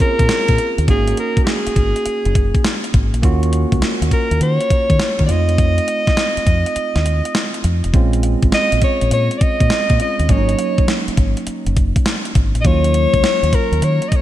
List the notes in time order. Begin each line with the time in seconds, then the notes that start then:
Already playing: A#3 G#4
0.00 C4 C#4 F4 A#4, muted fingered electric bass stroke, kick, closed hi-hat
0.19 A#2, kick, closed hi-hat
0.29 snare, closed hi-hat
0.48 A#2, kick, closed hi-hat
0.58 closed hi-hat
0.78 D#2, closed hi-hat
0.87 G#1 A#3 C#4 D#4 F#4 G#4, kick, closed hi-hat
1.08 closed hi-hat
1.17 A#4, closed hi-hat
1.37 muted fingered electric bass stroke, kick, closed hi-hat
1.44 G4, snare, closed hi-hat
1.49 G#4
1.67 muted fingered electric bass stroke, closed hi-hat
1.76 G#1, kick, closed hi-hat
1.96 closed hi-hat
2.06 muted fingered electric bass stroke, closed hi-hat
2.25 F#1, closed hi-hat
2.35 kick, closed hi-hat
2.55 kick, closed hi-hat
2.65 snare, closed hi-hat
2.84 closed hi-hat
2.94 G#1, kick, closed hi-hat
3.13 A#1, closed hi-hat
3.23 D#2 A#3 C#4 F4 F#4, kick, closed hi-hat
3.43 closed hi-hat
3.53 closed hi-hat
3.72 C#2, kick, closed hi-hat
3.82 muted fingered electric bass stroke, snare, closed hi-hat
4.02 D#2, closed hi-hat
4.11 A#4, kick, closed hi-hat
4.31 D#2, closed hi-hat
4.41 D#3 C#5, closed hi-hat
4.61 closed hi-hat
4.70 muted fingered electric bass stroke, kick, closed hi-hat
4.90 D#3, kick, closed hi-hat
5.00 snare, closed hi-hat
5.19 D#3, kick, closed hi-hat
5.26 F2 A3 C4 D#4 D5, closed hi-hat
5.30 F4 D#5
5.49 closed hi-hat
5.58 kick, closed hi-hat
5.78 closed hi-hat
5.88 closed hi-hat
6.07 muted fingered electric bass stroke, kick, snare, closed hi-hat
6.17 snare, closed hi-hat
6.37 muted fingered electric bass stroke, closed hi-hat
6.47 F2, kick, closed hi-hat
6.66 closed hi-hat
6.76 muted fingered electric bass stroke, closed hi-hat
6.96 D#2, snare, closed hi-hat
7.06 closed hi-hat
7.25 closed hi-hat
7.35 snare, closed hi-hat
7.54 closed hi-hat
7.64 F2, closed hi-hat
7.84 F1, closed hi-hat
7.93 A#1 G#3 C4 C#4 F4, kick, closed hi-hat
8.13 closed hi-hat
8.23 closed hi-hat
8.43 G#1, kick, closed hi-hat
8.52 D#5, muted fingered electric bass stroke, snare, closed hi-hat
8.72 A#1, closed hi-hat
8.82 C#5, kick, closed hi-hat
9.01 A#1, closed hi-hat
9.11 A#2 C#5, closed hi-hat
9.31 closed hi-hat
9.38 D5, muted fingered electric bass stroke, kick, closed hi-hat
9.42 D#5
9.60 A#2, kick, closed hi-hat
9.70 snare, closed hi-hat
9.90 A#2, kick, closed hi-hat
10.00 G#3 C4 C#4 F4 D#5, closed hi-hat
10.19 D#2, closed hi-hat
10.28 G#1 F#3 A#3 C#4 D4 C#5, kick, closed hi-hat
10.37 D#4
10.49 closed hi-hat
10.59 closed hi-hat
10.78 muted fingered electric bass stroke, kick, closed hi-hat
10.88 snare, closed hi-hat
11.08 muted fingered electric bass stroke, closed hi-hat
11.17 G#1, kick, closed hi-hat
11.37 closed hi-hat
11.47 muted fingered electric bass stroke, closed hi-hat
11.66 F#1, closed hi-hat
11.77 kick, closed hi-hat
11.96 kick, closed hi-hat
12.06 snare, closed hi-hat
12.25 closed hi-hat
12.35 G#1, kick, closed hi-hat
12.55 A#1, closed hi-hat
12.61 D#2 F#3 A#3 D#5, kick, closed hi-hat
12.65 C#4 F4 C#5
12.84 closed hi-hat
12.94 closed hi-hat
13.14 C#2, kick, closed hi-hat
13.23 muted fingered electric bass stroke, snare, closed hi-hat
13.43 D#2, closed hi-hat
13.53 A#4, kick, closed hi-hat
13.72 D#2, closed hi-hat
13.82 D#3 C#5, closed hi-hat
14.02 closed hi-hat
14.08 D#5, muted fingered electric bass stroke, kick, closed hi-hat
14.16 C#5